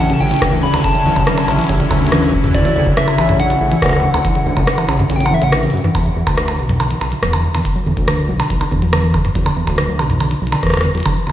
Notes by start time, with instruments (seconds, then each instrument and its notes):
Already playing: detuned saw bass A1, analog synth pad D3 F#3 C#4 E4 A4
0.00 soft synth lead F#5
0.10 synth arpeggio sound C#3, soft synth lead A5, closed hi-hat
0.20 detuned saw bass A1, synth arpeggio sound D3, soft synth lead G5
0.31 synth arpeggio sound C#3, closed hi-hat
0.34 closed hi-hat
0.37 closed hi-hat
0.39 detuned saw bass D2, synth arpeggio sound C#3, kick, cross-stick, closed hi-hat
0.42 closed hi-hat
0.52 synth arpeggio sound E3
0.63 synth arpeggio sound C#3, soft synth lead B5
0.74 detuned saw bass D2, synth arpeggio sound D3, closed hi-hat, percussion blips
0.84 synth arpeggio sound C#3, soft synth lead A5, kick, closed hi-hat
0.95 synth arpeggio sound C#3, closed hi-hat
1.06 detuned saw bass D2, synth arpeggio sound E3, open hi-hat
1.16 detuned saw bass A1, synth arpeggio sound C#3, kick, percussion blips
1.27 synth arpeggio sound D3, cross-stick, closed hi-hat
1.37 synth arpeggio sound C#3, percussion blips
1.48 detuned saw bass A1, synth arpeggio sound C#3, percussion blips
1.59 synth arpeggio sound E3, closed hi-hat
1.61 closed hi-hat
1.64 closed hi-hat
1.67 detuned saw bass A1, synth arpeggio sound C#3, kick, closed hi-hat
1.69 closed hi-hat
1.72 closed hi-hat
1.75 closed hi-hat
1.77 synth arpeggio sound D3, closed hi-hat
1.80 closed hi-hat
1.91 detuned saw bass D2, synth arpeggio sound C#3, kick, percussion blips
2.01 synth arpeggio sound C#3
2.07 closed hi-hat
2.12 synth arpeggio sound E3, cross-stick, closed hi-hat
2.23 synth arpeggio sound C#3, open hi-hat
2.33 synth arpeggio sound D3, kick
2.44 synth arpeggio sound C#3, mid tom, open hi-hat
2.47 mid tom
2.51 detuned saw bass D2, synth arpeggio sound C#3, soft synth lead D5, kick, closed hi-hat, mid tom
2.55 mid tom
2.58 mid tom
2.62 synth arpeggio sound E3, closed hi-hat, mid tom
2.76 detuned saw bass D2, synth arpeggio sound C#3, soft synth lead D5
2.86 detuned saw bass A1, synth arpeggio sound D3, kick
2.97 synth arpeggio sound C#3, soft synth lead E5, cross-stick, closed hi-hat
3.08 synth arpeggio sound C#3, percussion blips
3.18 detuned saw bass A1, synth arpeggio sound E3, percussion blips
3.29 synth arpeggio sound C#3, closed hi-hat, mid tom
3.40 synth arpeggio sound D3, soft synth lead F#5, closed hi-hat
3.50 synth arpeggio sound C#3, closed hi-hat
3.61 detuned saw bass A1, synth arpeggio sound C#3
3.72 synth arpeggio sound E3, closed hi-hat
3.82 detuned saw bass D2, synth arpeggio sound C#3, kick, cross-stick, closed hi-hat
3.86 cross-stick
3.89 synth arpeggio sound D3, cross-stick
3.93 cross-stick
3.96 cross-stick
4.00 synth arpeggio sound C#3, cross-stick
4.14 detuned saw bass D2, synth arpeggio sound C#3, closed hi-hat, percussion blips
4.25 synth arpeggio sound E3, kick, closed hi-hat
4.35 synth arpeggio sound C#3, closed hi-hat
4.46 detuned saw bass D2, synth arpeggio sound D3
4.57 detuned saw bass A1, synth arpeggio sound C#3, kick, closed hi-hat, percussion blips
4.67 synth arpeggio sound C#3, cross-stick, closed hi-hat
4.78 synth arpeggio sound E3, percussion blips
4.89 detuned saw bass A1, synth arpeggio sound C#3, percussion blips
4.99 synth arpeggio sound D3, mid tom
5.10 detuned saw bass A1, synth arpeggio sound C#3, closed hi-hat
5.16 soft synth lead G5
5.21 synth arpeggio sound C#3, closed hi-hat
5.25 soft synth lead F#5, percussion blips
5.31 detuned saw bass D1, synth arpeggio sound E3, soft synth lead E5
5.42 detuned saw bass A1, synth arpeggio sound C#3, soft synth lead F#5, closed hi-hat
5.52 synth arpeggio sound D3, cross-stick, closed hi-hat
5.63 synth arpeggio sound C#3, open hi-hat
5.70 detuned saw bass F#2, synth arpeggio sound C#3, open hi-hat
5.77 open hi-hat
5.84 synth arpeggio sound E3, mid tom
5.95 detuned saw bass E2, synth arpeggio sound D3, kick, closed hi-hat, percussion blips
6.06 synth arpeggio sound D3
6.16 detuned saw bass E2, synth arpeggio sound F#3
6.27 detuned saw bass D2, synth arpeggio sound D3, kick, closed hi-hat, percussion blips
6.37 synth arpeggio sound E3, cross-stick, closed hi-hat
6.48 synth arpeggio sound D3, percussion blips
6.59 detuned saw bass B1, synth arpeggio sound D3
6.69 synth arpeggio sound F#3, closed hi-hat, mid tom
6.80 synth arpeggio sound D3, closed hi-hat, percussion blips
6.91 synth arpeggio sound E3, closed hi-hat
7.01 detuned saw bass B1, synth arpeggio sound D3, percussion blips
7.12 synth arpeggio sound D3, closed hi-hat
7.23 detuned saw bass E2, synth arpeggio sound F#3, kick, cross-stick, closed hi-hat
7.25 kick
7.28 kick
7.31 kick
7.33 synth arpeggio sound D3, kick, percussion blips
7.41 synth arpeggio sound E3, kick
7.55 detuned saw bass E2, synth arpeggio sound D3, closed hi-hat, percussion blips
7.65 synth arpeggio sound D3, kick, closed hi-hat
7.76 synth arpeggio sound F#3
7.86 detuned saw bass E2, synth arpeggio sound D3
7.97 detuned saw bass D2, synth arpeggio sound E3, kick, closed hi-hat
8.08 synth arpeggio sound D3, cross-stick, closed hi-hat, percussion blips
8.18 synth arpeggio sound D3
8.29 detuned saw bass B1, synth arpeggio sound F#3
8.40 synth arpeggio sound D3, closed hi-hat, percussion blips
8.50 detuned saw bass B1, synth arpeggio sound E3, kick, closed hi-hat
8.61 synth arpeggio sound D3, closed hi-hat, percussion blips
8.71 detuned saw bass E2, synth arpeggio sound D3, kick
8.82 synth arpeggio sound F#3, closed hi-hat
8.93 synth arpeggio sound D3, cross-stick, closed hi-hat, percussion blips
9.03 synth arpeggio sound E3
9.14 synth arpeggio sound D3, kick, percussion blips
9.25 synth arpeggio sound D3, closed hi-hat, mid tom
9.35 detuned saw bass E2, synth arpeggio sound F#3, kick, closed hi-hat
9.46 synth arpeggio sound D3, percussion blips
9.57 detuned saw bass E2, synth arpeggio sound E3
9.67 detuned saw bass D2, synth arpeggio sound D3, kick, closed hi-hat, percussion blips
9.70 kick
9.73 kick
9.75 kick
9.78 synth arpeggio sound D3, kick, cross-stick, closed hi-hat
9.81 kick
9.83 kick
9.86 synth arpeggio sound F#3, kick
9.99 detuned saw bass B1, synth arpeggio sound D3, percussion blips
10.10 synth arpeggio sound E3, closed hi-hat, mid tom
10.20 synth arpeggio sound D3, closed hi-hat, percussion blips
10.31 synth arpeggio sound D3, closed hi-hat
10.42 detuned saw bass B1, synth arpeggio sound F#3
10.47 closed hi-hat
10.52 synth arpeggio sound D3, percussion blips
10.63 detuned saw bass E2, kick, cross-stick, closed hi-hat
10.67 cross-stick
10.70 cross-stick
10.74 synth arpeggio sound D3, cross-stick, percussion blips
10.77 cross-stick
10.81 synth arpeggio sound D3, cross-stick
10.95 detuned saw bass E2, synth arpeggio sound F#3, closed hi-hat
10.98 closed hi-hat
11.00 closed hi-hat
11.03 kick, closed hi-hat
11.06 synth arpeggio sound D3, closed hi-hat, percussion blips
11.16 synth arpeggio sound E3
11.27 detuned saw bass E2, synth arpeggio sound D3, percussion blips